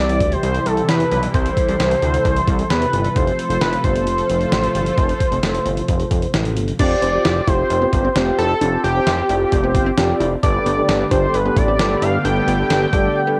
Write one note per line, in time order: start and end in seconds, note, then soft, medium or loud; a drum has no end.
0.00 0.22 C2 loud
0.00 6.75 C3 medium
0.00 3.12 E3 medium
0.00 3.12 G3 medium
0.00 3.12 E4 medium
0.00 1.32 G4 medium
0.00 0.34 D5 loud
0.09 closed hi-hat medium
0.20 0.36 D2 medium
0.20 kick medium
0.20 closed hi-hat medium
0.32 0.43 C5 medium
0.32 closed hi-hat medium
0.43 0.59 C2 loud
0.43 0.67 C5 loud
0.43 closed hi-hat medium
0.54 closed hi-hat medium
0.66 0.82 C2 loud
0.66 0.88 A4 medium
0.66 closed hi-hat medium
0.77 closed hi-hat soft
0.89 1.05 E2 medium
0.89 1.10 B4 loud
0.89 snare loud
0.89 closed hi-hat medium
1.00 closed hi-hat medium
1.11 1.27 B1 medium
1.11 1.22 B4 medium
1.11 closed hi-hat medium
1.23 closed hi-hat medium
1.34 1.50 C2 loud
1.34 3.14 A4 medium
1.34 2.67 C5 loud
1.34 kick loud
1.34 closed hi-hat medium
1.46 closed hi-hat medium
1.57 kick medium
1.57 closed hi-hat medium
1.68 1.76 C2 medium
1.68 closed hi-hat medium
1.80 1.95 C2 loud
1.80 snare loud
1.80 closed hi-hat medium
1.91 closed hi-hat medium
2.02 2.18 D2 medium
2.02 closed hi-hat medium
2.14 closed hi-hat medium
2.25 2.41 C2 loud
2.25 kick medium
2.25 closed hi-hat medium
2.36 closed hi-hat medium
2.48 2.64 C2 loud
2.48 kick loud
2.48 closed hi-hat medium
2.59 closed hi-hat soft
2.70 2.86 E2 medium
2.70 3.18 B4 medium
2.70 snare loud
2.70 closed hi-hat medium
2.82 closed hi-hat medium
2.93 3.09 G1 medium
2.93 closed hi-hat medium
3.04 closed hi-hat medium
3.16 3.32 F1 loud
3.16 6.76 F3 medium
3.16 6.76 A3 medium
3.16 6.76 F4 medium
3.16 6.76 A4 medium
3.16 3.50 C5 loud
3.16 kick loud
3.16 closed hi-hat medium
3.27 closed hi-hat soft
3.39 closed hi-hat medium
3.50 3.58 F1 medium
3.50 3.61 C5 medium
3.50 closed hi-hat medium
3.61 3.77 F1 loud
3.61 3.83 B4 medium
3.61 snare loud
3.61 closed hi-hat medium
3.73 closed hi-hat medium
3.84 4.08 G1 medium
3.84 6.30 C5 medium
3.84 kick medium
3.84 closed hi-hat medium
3.96 closed hi-hat medium
4.07 4.23 F1 loud
4.07 closed hi-hat medium
4.18 closed hi-hat medium
4.30 4.45 F1 loud
4.30 closed hi-hat medium
4.41 closed hi-hat soft
4.52 4.68 A1 medium
4.52 snare loud
4.52 closed hi-hat medium
4.64 closed hi-hat medium
4.75 4.91 G1 medium
4.75 closed hi-hat medium
4.86 closed hi-hat medium
4.98 5.14 F1 loud
4.98 kick loud
4.98 closed hi-hat medium
5.09 closed hi-hat soft
5.20 kick medium
5.20 closed hi-hat medium
5.32 5.40 F1 loud
5.32 closed hi-hat medium
5.43 5.59 F1 loud
5.43 snare loud
5.43 closed hi-hat medium
5.54 closed hi-hat medium
5.66 5.82 G1 medium
5.66 closed hi-hat medium
5.77 closed hi-hat medium
5.88 6.04 F1 loud
5.88 kick medium
5.88 closed hi-hat medium
6.00 closed hi-hat medium
6.11 6.27 F1 loud
6.11 kick loud
6.11 closed hi-hat medium
6.22 closed hi-hat soft
6.34 6.58 A1 medium
6.34 snare loud
6.34 closed hi-hat medium
6.45 closed hi-hat medium
6.57 6.73 G1 medium
6.57 closed hi-hat medium
6.68 closed hi-hat medium
6.79 6.95 F1 loud
6.79 7.07 C4 medium
6.79 6.99 D4 loud
6.79 7.07 F4 medium
6.79 7.07 G4 medium
6.79 7.07 C5 medium
6.79 7.49 D5 loud
6.79 kick loud
6.79 closed hi-hat medium
6.79 crash loud
7.02 7.18 F1 loud
7.02 7.21 C4 medium
7.02 closed hi-hat medium
7.13 7.41 C4 medium
7.13 7.41 F4 medium
7.13 7.41 G4 medium
7.13 7.41 C5 medium
7.25 7.41 F1 loud
7.25 7.44 E4 medium
7.25 snare loud
7.25 closed hi-hat medium
7.47 7.64 F1 loud
7.47 7.75 C4 medium
7.47 7.67 E4 medium
7.47 7.75 F4 medium
7.47 7.75 G4 medium
7.47 8.16 C5 loud
7.47 7.75 C5 medium
7.47 kick loud
7.47 closed hi-hat medium
7.70 7.86 F1 loud
7.70 closed hi-hat medium
7.82 8.01 B3 medium
7.82 8.09 C4 medium
7.82 8.09 F4 medium
7.82 8.09 G4 medium
7.82 8.09 C5 medium
7.93 8.09 G1 medium
7.93 kick loud
7.93 closed hi-hat medium
8.04 8.14 C4 medium
8.16 8.32 F1 loud
8.16 8.52 C4 medium
8.16 8.35 D4 medium
8.16 8.52 F4 medium
8.16 8.52 G4 medium
8.16 8.52 C5 loud
8.16 snare loud
8.16 closed hi-hat medium
8.38 8.54 F1 medium
8.38 8.58 E4 medium
8.38 8.81 A4 loud
8.38 closed hi-hat medium
8.61 8.77 F1 loud
8.61 8.89 C4 medium
8.61 8.80 D4 loud
8.61 8.89 F4 medium
8.61 8.89 G4 medium
8.61 8.89 C5 medium
8.61 closed hi-hat medium
8.84 9.00 F1 loud
8.84 9.03 C4 medium
8.84 10.16 G4 loud
8.84 closed hi-hat medium
8.95 9.23 C4 medium
8.95 9.23 F4 medium
8.95 9.23 G4 medium
8.95 9.23 C5 medium
9.06 9.22 F1 loud
9.06 9.26 E4 medium
9.06 snare loud
9.06 closed hi-hat medium
9.29 9.45 F1 loud
9.29 9.57 C4 medium
9.29 9.49 E4 medium
9.29 9.57 F4 medium
9.29 9.57 G4 medium
9.29 9.57 D5 medium
9.29 closed hi-hat medium
9.52 9.76 F1 loud
9.52 kick medium
9.52 closed hi-hat medium
9.63 9.83 B3 medium
9.63 9.91 C4 medium
9.63 9.91 F4 medium
9.63 9.91 G4 medium
9.63 9.91 C5 loud
9.75 9.91 G1 loud
9.75 kick loud
9.75 closed hi-hat medium
9.86 9.96 C4 medium
9.97 10.14 F1 loud
9.97 10.34 C4 medium
9.97 10.17 D4 medium
9.97 10.34 F4 medium
9.97 10.34 G4 medium
9.97 10.34 D5 loud
9.97 snare loud
9.97 closed hi-hat medium
10.20 10.36 F1 loud
10.20 10.40 E4 medium
10.20 closed hi-hat medium
10.43 10.59 G1 loud
10.43 13.40 D3 medium
10.43 13.40 G3 medium
10.43 13.40 A3 medium
10.43 13.40 B3 medium
10.43 10.70 D4 medium
10.43 10.62 D4 loud
10.43 13.40 G4 medium
10.43 10.70 G4 medium
10.43 10.70 A4 medium
10.43 10.70 B4 medium
10.43 11.07 D5 loud
10.43 kick loud
10.43 closed hi-hat medium
10.66 10.82 G1 loud
10.66 10.85 B3 medium
10.66 closed hi-hat medium
10.77 11.05 D4 medium
10.77 11.05 G4 medium
10.77 11.05 A4 medium
10.77 11.05 B4 medium
10.89 11.04 G1 loud
10.89 11.08 D4 medium
10.89 snare loud
10.89 closed hi-hat medium
11.11 11.27 G1 loud
11.11 11.39 D4 medium
11.11 11.31 D4 medium
11.11 11.39 G4 medium
11.11 11.39 A4 medium
11.11 11.36 C5 medium
11.11 11.39 D5 medium
11.11 kick medium
11.11 closed hi-hat medium
11.34 11.50 G1 loud
11.34 11.58 B4 medium
11.34 closed hi-hat medium
11.45 11.65 B3 medium
11.45 11.73 D4 medium
11.45 11.73 G4 medium
11.45 11.73 A4 medium
11.45 11.73 B4 medium
11.56 11.81 A1 loud
11.56 12.04 D5 loud
11.56 kick loud
11.56 closed hi-hat medium
11.68 11.78 C4 medium
11.79 11.95 G1 loud
11.79 12.16 D4 medium
11.79 11.99 D4 medium
11.79 12.16 G4 medium
11.79 12.16 A4 medium
11.79 12.16 B4 medium
11.79 snare loud
11.79 closed hi-hat medium
12.02 12.18 G1 medium
12.02 12.21 E4 medium
12.02 12.24 F5 loud
12.02 closed hi-hat medium
12.25 12.41 G1 loud
12.25 12.52 D4 medium
12.25 12.44 D4 loud
12.25 12.52 G4 medium
12.25 12.52 A4 medium
12.25 12.52 B4 medium
12.25 13.40 G5 loud
12.25 closed hi-hat medium
12.47 12.63 G1 loud
12.47 12.67 B3 medium
12.47 closed hi-hat medium
12.59 12.86 D4 medium
12.59 12.86 G4 medium
12.59 12.86 A4 medium
12.59 12.86 B4 medium
12.70 12.86 G1 loud
12.70 12.90 D4 medium
12.70 snare loud
12.70 closed hi-hat medium
12.93 13.09 G1 loud
12.93 13.12 D4 medium
12.93 13.20 D4 medium
12.93 13.20 G4 medium
12.93 13.20 A4 medium
12.93 13.20 D5 loud
12.93 kick loud
12.93 closed hi-hat medium
13.27 13.40 B3 medium
13.27 13.40 D4 medium
13.27 13.40 G4 medium
13.27 13.40 A4 medium
13.27 13.40 B4 loud